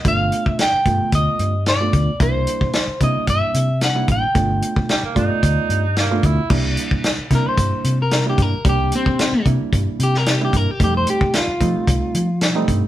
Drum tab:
CC |----------------|----------------|----------------|x---------------|
HH |x-x-x-x-x-x-x-x-|x-x-x-x-x-x-x-x-|x-x-x-x-x-x-x-x-|--x-x-x-x-x-x-x-|
SD |----o-------o---|----o-------o---|----o-------o---|----o-o-----o---|
BD |o--o--o-o-----o-|o--o--o-o-----o-|o--o--o-o-----o-|o--o--o-o-----o-|

CC |----------------|----------------|
HH |x-x-x-x-x-x-x-x-|x-x-x-x-x-x-x-x-|
SD |----o------oo---|----o-------o---|
BD |o--o--o-o-----o-|o--o--o-o-----o-|